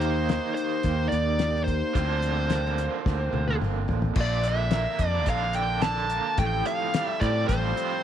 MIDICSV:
0, 0, Header, 1, 6, 480
1, 0, Start_track
1, 0, Tempo, 554017
1, 1691, Time_signature, 4, 2, 24, 8
1, 6958, End_track
2, 0, Start_track
2, 0, Title_t, "Lead electric guitar"
2, 0, Program_c, 0, 29
2, 0, Note_on_c, 0, 72, 89
2, 462, Note_off_c, 0, 72, 0
2, 472, Note_on_c, 0, 72, 89
2, 940, Note_off_c, 0, 72, 0
2, 944, Note_on_c, 0, 74, 87
2, 1403, Note_off_c, 0, 74, 0
2, 1421, Note_on_c, 0, 72, 69
2, 3082, Note_off_c, 0, 72, 0
2, 3645, Note_on_c, 0, 74, 86
2, 3875, Note_off_c, 0, 74, 0
2, 3879, Note_on_c, 0, 76, 85
2, 4408, Note_off_c, 0, 76, 0
2, 4408, Note_on_c, 0, 74, 85
2, 4585, Note_off_c, 0, 74, 0
2, 4589, Note_on_c, 0, 77, 100
2, 4804, Note_off_c, 0, 77, 0
2, 4815, Note_on_c, 0, 79, 93
2, 5042, Note_on_c, 0, 81, 96
2, 5061, Note_off_c, 0, 79, 0
2, 5535, Note_on_c, 0, 79, 106
2, 5541, Note_off_c, 0, 81, 0
2, 5757, Note_off_c, 0, 79, 0
2, 5777, Note_on_c, 0, 77, 88
2, 6132, Note_off_c, 0, 77, 0
2, 6132, Note_on_c, 0, 76, 88
2, 6246, Note_on_c, 0, 74, 88
2, 6268, Note_off_c, 0, 76, 0
2, 6477, Note_off_c, 0, 74, 0
2, 6480, Note_on_c, 0, 72, 79
2, 6958, Note_off_c, 0, 72, 0
2, 6958, End_track
3, 0, Start_track
3, 0, Title_t, "Twelve-string acoustic guitar"
3, 0, Program_c, 1, 25
3, 0, Note_on_c, 1, 51, 73
3, 0, Note_on_c, 1, 58, 72
3, 0, Note_on_c, 1, 63, 79
3, 0, Note_on_c, 1, 67, 85
3, 240, Note_off_c, 1, 51, 0
3, 250, Note_on_c, 1, 51, 65
3, 260, Note_off_c, 1, 58, 0
3, 262, Note_off_c, 1, 63, 0
3, 263, Note_on_c, 1, 58, 62
3, 264, Note_off_c, 1, 67, 0
3, 272, Note_on_c, 1, 63, 62
3, 277, Note_on_c, 1, 67, 67
3, 484, Note_off_c, 1, 67, 0
3, 490, Note_off_c, 1, 51, 0
3, 494, Note_on_c, 1, 67, 55
3, 497, Note_off_c, 1, 58, 0
3, 501, Note_off_c, 1, 63, 0
3, 511, Note_on_c, 1, 63, 45
3, 514, Note_on_c, 1, 58, 45
3, 732, Note_off_c, 1, 67, 0
3, 733, Note_off_c, 1, 58, 0
3, 736, Note_on_c, 1, 51, 55
3, 740, Note_off_c, 1, 63, 0
3, 744, Note_on_c, 1, 58, 58
3, 751, Note_on_c, 1, 63, 56
3, 754, Note_on_c, 1, 67, 65
3, 1210, Note_off_c, 1, 51, 0
3, 1220, Note_on_c, 1, 51, 51
3, 1221, Note_off_c, 1, 63, 0
3, 1222, Note_off_c, 1, 67, 0
3, 1230, Note_off_c, 1, 58, 0
3, 1233, Note_on_c, 1, 58, 56
3, 1237, Note_on_c, 1, 63, 55
3, 1248, Note_on_c, 1, 67, 59
3, 1456, Note_off_c, 1, 51, 0
3, 1459, Note_off_c, 1, 67, 0
3, 1462, Note_off_c, 1, 58, 0
3, 1464, Note_off_c, 1, 63, 0
3, 1470, Note_on_c, 1, 67, 51
3, 1480, Note_on_c, 1, 63, 47
3, 1492, Note_on_c, 1, 58, 43
3, 1690, Note_on_c, 1, 50, 69
3, 1695, Note_off_c, 1, 58, 0
3, 1700, Note_off_c, 1, 67, 0
3, 1704, Note_on_c, 1, 53, 72
3, 1705, Note_off_c, 1, 63, 0
3, 1706, Note_on_c, 1, 58, 75
3, 1709, Note_on_c, 1, 65, 85
3, 1710, Note_on_c, 1, 60, 79
3, 2159, Note_off_c, 1, 53, 0
3, 2168, Note_off_c, 1, 58, 0
3, 2170, Note_on_c, 1, 53, 64
3, 2171, Note_off_c, 1, 50, 0
3, 2178, Note_on_c, 1, 58, 66
3, 2180, Note_off_c, 1, 65, 0
3, 2181, Note_off_c, 1, 60, 0
3, 2189, Note_on_c, 1, 60, 70
3, 2192, Note_on_c, 1, 65, 73
3, 2407, Note_off_c, 1, 65, 0
3, 2410, Note_off_c, 1, 53, 0
3, 2415, Note_off_c, 1, 58, 0
3, 2417, Note_on_c, 1, 65, 57
3, 2420, Note_off_c, 1, 60, 0
3, 2431, Note_on_c, 1, 60, 52
3, 2443, Note_on_c, 1, 58, 45
3, 2654, Note_off_c, 1, 65, 0
3, 2660, Note_on_c, 1, 53, 61
3, 2661, Note_off_c, 1, 58, 0
3, 2661, Note_off_c, 1, 60, 0
3, 2672, Note_on_c, 1, 58, 67
3, 2676, Note_on_c, 1, 60, 64
3, 2685, Note_on_c, 1, 65, 69
3, 3124, Note_off_c, 1, 53, 0
3, 3135, Note_on_c, 1, 53, 63
3, 3137, Note_off_c, 1, 58, 0
3, 3144, Note_off_c, 1, 60, 0
3, 3148, Note_on_c, 1, 58, 62
3, 3149, Note_off_c, 1, 65, 0
3, 3155, Note_on_c, 1, 60, 64
3, 3158, Note_on_c, 1, 65, 60
3, 3354, Note_off_c, 1, 65, 0
3, 3364, Note_on_c, 1, 65, 53
3, 3372, Note_off_c, 1, 60, 0
3, 3373, Note_off_c, 1, 53, 0
3, 3380, Note_off_c, 1, 58, 0
3, 3382, Note_on_c, 1, 60, 57
3, 3396, Note_on_c, 1, 58, 43
3, 3608, Note_off_c, 1, 65, 0
3, 3612, Note_on_c, 1, 46, 74
3, 3616, Note_off_c, 1, 58, 0
3, 3617, Note_off_c, 1, 60, 0
3, 3617, Note_on_c, 1, 53, 75
3, 3624, Note_on_c, 1, 62, 78
3, 3626, Note_on_c, 1, 58, 74
3, 3635, Note_on_c, 1, 70, 74
3, 3830, Note_off_c, 1, 70, 0
3, 3840, Note_on_c, 1, 70, 44
3, 3850, Note_off_c, 1, 62, 0
3, 3852, Note_off_c, 1, 46, 0
3, 3854, Note_off_c, 1, 53, 0
3, 3856, Note_off_c, 1, 58, 0
3, 3861, Note_on_c, 1, 62, 41
3, 3867, Note_on_c, 1, 58, 37
3, 4084, Note_on_c, 1, 53, 63
3, 4086, Note_off_c, 1, 70, 0
3, 4087, Note_off_c, 1, 58, 0
3, 4094, Note_off_c, 1, 62, 0
3, 4097, Note_on_c, 1, 58, 63
3, 4104, Note_on_c, 1, 62, 61
3, 4109, Note_on_c, 1, 70, 67
3, 4314, Note_off_c, 1, 70, 0
3, 4324, Note_on_c, 1, 70, 52
3, 4326, Note_off_c, 1, 62, 0
3, 4328, Note_off_c, 1, 53, 0
3, 4335, Note_off_c, 1, 58, 0
3, 4337, Note_on_c, 1, 62, 42
3, 4347, Note_on_c, 1, 58, 39
3, 4567, Note_off_c, 1, 58, 0
3, 4568, Note_off_c, 1, 70, 0
3, 4569, Note_on_c, 1, 46, 77
3, 4569, Note_on_c, 1, 53, 82
3, 4574, Note_off_c, 1, 62, 0
3, 4578, Note_on_c, 1, 58, 73
3, 4583, Note_on_c, 1, 62, 74
3, 4590, Note_on_c, 1, 70, 82
3, 5029, Note_off_c, 1, 53, 0
3, 5040, Note_on_c, 1, 53, 53
3, 5043, Note_off_c, 1, 58, 0
3, 5049, Note_off_c, 1, 62, 0
3, 5050, Note_off_c, 1, 46, 0
3, 5054, Note_on_c, 1, 58, 56
3, 5057, Note_off_c, 1, 70, 0
3, 5060, Note_on_c, 1, 62, 58
3, 5067, Note_on_c, 1, 70, 65
3, 5519, Note_off_c, 1, 53, 0
3, 5526, Note_on_c, 1, 45, 66
3, 5529, Note_off_c, 1, 58, 0
3, 5529, Note_on_c, 1, 53, 79
3, 5530, Note_on_c, 1, 55, 79
3, 5532, Note_on_c, 1, 60, 82
3, 5535, Note_off_c, 1, 62, 0
3, 5538, Note_off_c, 1, 70, 0
3, 5538, Note_on_c, 1, 65, 83
3, 5542, Note_on_c, 1, 69, 84
3, 6001, Note_off_c, 1, 55, 0
3, 6002, Note_off_c, 1, 60, 0
3, 6004, Note_on_c, 1, 55, 62
3, 6008, Note_off_c, 1, 45, 0
3, 6010, Note_off_c, 1, 53, 0
3, 6012, Note_off_c, 1, 65, 0
3, 6012, Note_on_c, 1, 60, 64
3, 6022, Note_on_c, 1, 65, 64
3, 6027, Note_off_c, 1, 69, 0
3, 6030, Note_on_c, 1, 69, 70
3, 6235, Note_off_c, 1, 69, 0
3, 6244, Note_off_c, 1, 65, 0
3, 6246, Note_on_c, 1, 69, 48
3, 6247, Note_off_c, 1, 55, 0
3, 6252, Note_off_c, 1, 60, 0
3, 6255, Note_on_c, 1, 65, 47
3, 6262, Note_on_c, 1, 60, 47
3, 6273, Note_on_c, 1, 55, 46
3, 6483, Note_off_c, 1, 55, 0
3, 6484, Note_off_c, 1, 65, 0
3, 6485, Note_on_c, 1, 45, 72
3, 6487, Note_off_c, 1, 60, 0
3, 6488, Note_off_c, 1, 69, 0
3, 6489, Note_on_c, 1, 53, 73
3, 6493, Note_on_c, 1, 55, 82
3, 6494, Note_on_c, 1, 65, 86
3, 6498, Note_on_c, 1, 60, 83
3, 6507, Note_on_c, 1, 69, 80
3, 6952, Note_off_c, 1, 55, 0
3, 6954, Note_off_c, 1, 60, 0
3, 6958, Note_off_c, 1, 45, 0
3, 6958, Note_off_c, 1, 53, 0
3, 6958, Note_off_c, 1, 65, 0
3, 6958, Note_off_c, 1, 69, 0
3, 6958, End_track
4, 0, Start_track
4, 0, Title_t, "Overdriven electric guitar"
4, 0, Program_c, 2, 29
4, 0, Note_on_c, 2, 51, 86
4, 0, Note_on_c, 2, 58, 89
4, 0, Note_on_c, 2, 63, 90
4, 0, Note_on_c, 2, 67, 97
4, 1427, Note_off_c, 2, 51, 0
4, 1439, Note_off_c, 2, 63, 0
4, 1443, Note_off_c, 2, 67, 0
4, 1679, Note_on_c, 2, 50, 81
4, 1687, Note_off_c, 2, 58, 0
4, 1691, Note_on_c, 2, 58, 82
4, 1702, Note_on_c, 2, 62, 95
4, 1712, Note_on_c, 2, 65, 89
4, 3591, Note_off_c, 2, 50, 0
4, 3598, Note_off_c, 2, 58, 0
4, 3603, Note_off_c, 2, 62, 0
4, 3605, Note_on_c, 2, 46, 65
4, 3608, Note_off_c, 2, 65, 0
4, 3844, Note_on_c, 2, 50, 64
4, 4092, Note_on_c, 2, 58, 67
4, 4322, Note_on_c, 2, 62, 63
4, 4554, Note_off_c, 2, 50, 0
4, 4565, Note_on_c, 2, 50, 69
4, 4795, Note_off_c, 2, 62, 0
4, 4806, Note_on_c, 2, 62, 64
4, 4809, Note_off_c, 2, 46, 0
4, 5035, Note_off_c, 2, 50, 0
4, 5045, Note_on_c, 2, 50, 73
4, 5271, Note_off_c, 2, 58, 0
4, 5281, Note_on_c, 2, 58, 69
4, 5526, Note_off_c, 2, 58, 0
4, 5528, Note_off_c, 2, 50, 0
4, 5528, Note_off_c, 2, 62, 0
4, 5532, Note_on_c, 2, 45, 68
4, 5772, Note_on_c, 2, 53, 63
4, 6005, Note_on_c, 2, 55, 72
4, 6247, Note_on_c, 2, 60, 66
4, 6484, Note_off_c, 2, 53, 0
4, 6494, Note_on_c, 2, 53, 76
4, 6713, Note_off_c, 2, 60, 0
4, 6724, Note_on_c, 2, 60, 68
4, 6731, Note_off_c, 2, 45, 0
4, 6952, Note_off_c, 2, 53, 0
4, 6958, Note_off_c, 2, 55, 0
4, 6958, Note_off_c, 2, 60, 0
4, 6958, End_track
5, 0, Start_track
5, 0, Title_t, "Fingered electric bass"
5, 0, Program_c, 3, 33
5, 0, Note_on_c, 3, 39, 99
5, 330, Note_off_c, 3, 39, 0
5, 734, Note_on_c, 3, 39, 99
5, 932, Note_off_c, 3, 39, 0
5, 972, Note_on_c, 3, 39, 84
5, 1570, Note_off_c, 3, 39, 0
5, 1691, Note_on_c, 3, 38, 94
5, 2489, Note_off_c, 3, 38, 0
5, 2650, Note_on_c, 3, 38, 94
5, 2850, Note_off_c, 3, 38, 0
5, 2882, Note_on_c, 3, 38, 86
5, 3085, Note_off_c, 3, 38, 0
5, 3117, Note_on_c, 3, 31, 77
5, 3340, Note_off_c, 3, 31, 0
5, 3361, Note_on_c, 3, 33, 85
5, 3582, Note_off_c, 3, 33, 0
5, 3604, Note_on_c, 3, 34, 104
5, 4206, Note_off_c, 3, 34, 0
5, 4325, Note_on_c, 3, 41, 84
5, 4562, Note_off_c, 3, 41, 0
5, 4562, Note_on_c, 3, 34, 88
5, 5363, Note_off_c, 3, 34, 0
5, 5529, Note_on_c, 3, 33, 107
5, 5729, Note_off_c, 3, 33, 0
5, 6249, Note_on_c, 3, 45, 97
5, 6449, Note_off_c, 3, 45, 0
5, 6488, Note_on_c, 3, 33, 86
5, 6688, Note_off_c, 3, 33, 0
5, 6958, End_track
6, 0, Start_track
6, 0, Title_t, "Drums"
6, 11, Note_on_c, 9, 42, 52
6, 98, Note_off_c, 9, 42, 0
6, 251, Note_on_c, 9, 42, 67
6, 258, Note_on_c, 9, 38, 100
6, 338, Note_off_c, 9, 42, 0
6, 345, Note_off_c, 9, 38, 0
6, 493, Note_on_c, 9, 42, 55
6, 579, Note_off_c, 9, 42, 0
6, 721, Note_on_c, 9, 42, 69
6, 730, Note_on_c, 9, 36, 103
6, 808, Note_off_c, 9, 42, 0
6, 817, Note_off_c, 9, 36, 0
6, 970, Note_on_c, 9, 42, 58
6, 1056, Note_off_c, 9, 42, 0
6, 1204, Note_on_c, 9, 42, 74
6, 1211, Note_on_c, 9, 38, 98
6, 1291, Note_off_c, 9, 42, 0
6, 1298, Note_off_c, 9, 38, 0
6, 1341, Note_on_c, 9, 38, 29
6, 1428, Note_off_c, 9, 38, 0
6, 1452, Note_on_c, 9, 36, 78
6, 1453, Note_on_c, 9, 42, 59
6, 1539, Note_off_c, 9, 36, 0
6, 1540, Note_off_c, 9, 42, 0
6, 1691, Note_on_c, 9, 36, 98
6, 1691, Note_on_c, 9, 42, 80
6, 1777, Note_off_c, 9, 36, 0
6, 1777, Note_off_c, 9, 42, 0
6, 1926, Note_on_c, 9, 42, 58
6, 2012, Note_off_c, 9, 42, 0
6, 2163, Note_on_c, 9, 42, 76
6, 2170, Note_on_c, 9, 38, 93
6, 2250, Note_off_c, 9, 42, 0
6, 2257, Note_off_c, 9, 38, 0
6, 2298, Note_on_c, 9, 38, 28
6, 2385, Note_off_c, 9, 38, 0
6, 2410, Note_on_c, 9, 42, 65
6, 2496, Note_off_c, 9, 42, 0
6, 2651, Note_on_c, 9, 36, 106
6, 2654, Note_on_c, 9, 38, 49
6, 2738, Note_off_c, 9, 36, 0
6, 2741, Note_off_c, 9, 38, 0
6, 2893, Note_on_c, 9, 48, 66
6, 2980, Note_off_c, 9, 48, 0
6, 3012, Note_on_c, 9, 48, 58
6, 3099, Note_off_c, 9, 48, 0
6, 3133, Note_on_c, 9, 47, 74
6, 3219, Note_off_c, 9, 47, 0
6, 3368, Note_on_c, 9, 43, 83
6, 3455, Note_off_c, 9, 43, 0
6, 3483, Note_on_c, 9, 43, 77
6, 3570, Note_off_c, 9, 43, 0
6, 3600, Note_on_c, 9, 49, 96
6, 3605, Note_on_c, 9, 36, 107
6, 3687, Note_off_c, 9, 49, 0
6, 3692, Note_off_c, 9, 36, 0
6, 3842, Note_on_c, 9, 42, 65
6, 3929, Note_off_c, 9, 42, 0
6, 4078, Note_on_c, 9, 42, 81
6, 4085, Note_on_c, 9, 38, 105
6, 4165, Note_off_c, 9, 42, 0
6, 4172, Note_off_c, 9, 38, 0
6, 4322, Note_on_c, 9, 42, 63
6, 4326, Note_on_c, 9, 36, 78
6, 4408, Note_off_c, 9, 42, 0
6, 4412, Note_off_c, 9, 36, 0
6, 4558, Note_on_c, 9, 42, 85
6, 4565, Note_on_c, 9, 36, 102
6, 4645, Note_off_c, 9, 42, 0
6, 4651, Note_off_c, 9, 36, 0
6, 4794, Note_on_c, 9, 42, 66
6, 4881, Note_off_c, 9, 42, 0
6, 5039, Note_on_c, 9, 42, 83
6, 5046, Note_on_c, 9, 38, 107
6, 5125, Note_off_c, 9, 42, 0
6, 5132, Note_off_c, 9, 38, 0
6, 5171, Note_on_c, 9, 38, 33
6, 5258, Note_off_c, 9, 38, 0
6, 5281, Note_on_c, 9, 42, 66
6, 5367, Note_off_c, 9, 42, 0
6, 5523, Note_on_c, 9, 42, 84
6, 5528, Note_on_c, 9, 36, 102
6, 5610, Note_off_c, 9, 42, 0
6, 5614, Note_off_c, 9, 36, 0
6, 5765, Note_on_c, 9, 42, 70
6, 5852, Note_off_c, 9, 42, 0
6, 6010, Note_on_c, 9, 42, 91
6, 6017, Note_on_c, 9, 38, 102
6, 6097, Note_off_c, 9, 42, 0
6, 6104, Note_off_c, 9, 38, 0
6, 6250, Note_on_c, 9, 42, 71
6, 6251, Note_on_c, 9, 36, 78
6, 6337, Note_off_c, 9, 42, 0
6, 6338, Note_off_c, 9, 36, 0
6, 6488, Note_on_c, 9, 42, 91
6, 6491, Note_on_c, 9, 36, 107
6, 6575, Note_off_c, 9, 42, 0
6, 6578, Note_off_c, 9, 36, 0
6, 6733, Note_on_c, 9, 42, 64
6, 6820, Note_off_c, 9, 42, 0
6, 6958, End_track
0, 0, End_of_file